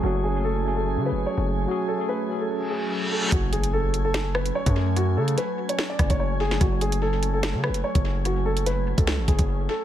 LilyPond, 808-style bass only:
\new Staff \with { instrumentName = "808-style bass" } { \clef bass \time 4/4 \key fis \minor \tempo 4 = 146 fis,,2~ fis,,16 cis16. fis,,16. r16 fis,,8. | r1 | fis,,2. r16 fis,8.~ | fis,8 cis8 r4. fis,,16 fis,,4~ fis,,16 |
fis,,2~ fis,,16 cis16. fis,,16. r16 fis,,8.~ | fis,,4.~ fis,,16 cis,8 a,,16 fis,,16 fis,,8. r8 | }